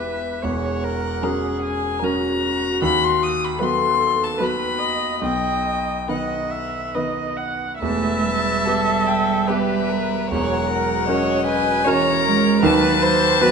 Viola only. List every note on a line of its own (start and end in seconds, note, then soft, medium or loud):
0.00 0.44 B4 medium
0.42 0.85 C#5 medium
0.84 1.25 A#4 medium
1.23 2.04 G#4 medium
2.02 3.58 F#4 medium
3.59 4.39 A4 medium
4.38 4.80 B4 medium
4.78 5.21 D#5 medium
5.22 5.98 D#5 medium
6.09 6.53 D#5 medium
6.51 6.96 E5 medium
6.95 7.39 D#5 medium
7.37 7.79 F#5 medium
7.80 9.49 E5 medium
9.48 10.30 B4 medium
10.31 10.70 C#5 medium
10.70 11.07 A#4 medium
11.08 11.46 C#5 medium
11.47 11.89 B4 medium
11.87 12.24 C#5 medium
12.25 12.65 A#4 medium
12.64 13.04 B4 medium
13.02 13.43 C5 loud
13.41 13.52 B4 loud